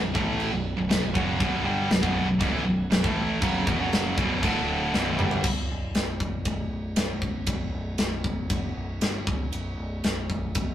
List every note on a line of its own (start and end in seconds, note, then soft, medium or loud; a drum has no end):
0.02 0.14 B0 medium
0.02 0.13 B1 medium
0.02 0.14 F#2 medium
0.14 0.50 A1 loud
0.14 0.51 A2 medium
0.14 0.51 E3 loud
0.14 0.52 A3 medium
0.14 kick loud
0.40 china medium
0.51 0.75 B0 medium
0.51 0.72 B1 medium
0.51 0.72 F#2 medium
0.77 0.89 B0 medium
0.77 0.89 B1 medium
0.77 0.89 F#2 medium
0.90 1.02 B0 medium
0.90 1.01 B1 medium
0.90 1.01 F#2 medium
0.90 snare loud
0.90 china medium
1.02 1.14 B0 medium
1.02 1.15 B1 medium
1.02 1.14 F#2 medium
1.15 1.38 F#1 medium
1.15 1.39 F#2 medium
1.15 1.40 C#3 medium
1.15 1.40 F#3 loud
1.15 kick loud
1.40 1.64 B0 medium
1.40 1.64 B1 medium
1.40 1.65 F#2 loud
1.40 1.65 B2 loud
1.40 kick loud
1.40 china medium
1.65 1.89 G1 loud
1.65 1.89 G2 medium
1.65 1.90 D3 medium
1.65 1.90 G3 medium
1.90 2.02 B0 medium
1.90 2.01 B1 medium
1.90 2.02 F#2 medium
1.90 snare loud
1.90 china medium
2.02 2.26 B0 loud
2.02 2.27 B1 medium
2.02 2.28 F#2 medium
2.02 2.28 B2 medium
2.02 kick loud
2.28 2.40 B0 medium
2.28 2.39 B1 medium
2.28 2.40 F#2 medium
2.40 2.52 C#1 loud
2.40 2.52 C#2 medium
2.40 2.53 G#2 loud
2.40 kick loud
2.40 china medium
2.53 2.65 A1 medium
2.53 2.65 A2 medium
2.53 2.65 E3 loud
2.66 2.89 B0 medium
2.66 2.86 B1 medium
2.66 2.86 F#2 medium
2.91 3.03 B0 medium
2.91 3.04 B1 medium
2.91 3.04 F#2 medium
2.91 snare loud
2.91 china medium
3.04 3.39 A1 medium
3.04 3.41 A2 medium
3.04 3.42 E3 loud
3.04 3.42 A3 medium
3.04 kick loud
3.41 3.65 F#1 medium
3.41 3.66 F#2 medium
3.41 3.67 C#3 medium
3.41 3.67 F#3 medium
3.41 kick loud
3.41 china medium
3.67 3.79 E1 loud
3.67 3.79 E2 medium
3.67 3.79 B2 loud
3.67 kick loud
3.79 4.15 F#1 medium
3.79 4.17 F#2 medium
3.79 4.17 C#3 medium
3.79 4.17 F#3 medium
3.92 snare loud
3.92 china medium
4.17 4.41 B0 medium
4.17 4.42 B1 medium
4.17 4.43 F#2 medium
4.17 4.44 B2 medium
4.17 kick loud
4.42 4.90 D1 loud
4.42 4.92 D2 loud
4.42 4.93 A2 loud
4.42 4.93 D3 loud
4.42 kick loud
4.42 china medium
4.93 5.17 B0 loud
4.93 5.18 B1 medium
4.93 5.18 F#2 medium
4.93 5.19 B2 medium
4.93 snare medium
5.06 high tom medium
5.18 5.43 G1 medium
5.18 5.43 G2 medium
5.18 5.44 D3 medium
5.18 5.44 G3 medium
5.18 mid tom medium
5.31 floor tom loud
5.44 5.68 B0 medium
5.44 kick loud
5.44 crash loud
5.69 5.93 B0 medium
5.95 6.19 B0 medium
5.95 snare medium
5.95 ride bell medium
6.20 6.44 B0 medium
6.20 kick medium
6.45 6.70 B0 medium
6.45 kick medium
6.45 ride bell medium
6.71 6.95 B0 medium
6.96 7.44 B0 medium
6.96 snare loud
6.96 ride bell medium
7.22 kick medium
7.47 7.72 B0 medium
7.47 kick loud
7.47 ride bell medium
7.73 7.97 B0 medium
7.98 8.23 B0 medium
7.98 snare loud
7.98 ride bell medium
8.24 8.49 B0 medium
8.24 kick medium
8.50 8.74 F#1 medium
8.50 kick loud
8.50 ride bell medium
8.76 9.00 B0 medium
9.01 9.25 G1 medium
9.01 snare medium
9.01 ride bell medium
9.27 9.51 C#1 medium
9.27 kick medium
9.52 9.77 B0 medium
9.52 ride bell medium
9.78 10.02 B0 medium
10.04 10.28 B0 medium
10.04 snare medium
10.04 ride bell medium
10.30 10.54 B0 medium
10.30 kick medium
10.55 10.74 B0 medium
10.55 kick loud
10.55 ride bell medium